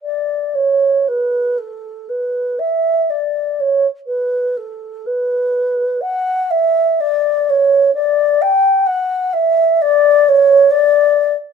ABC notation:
X:1
M:3/4
L:1/8
Q:1/4=62
K:Bm
V:1 name="Alto flute"
d c B A B e | d c B A B2 | f e d c d g | f e d c d z |]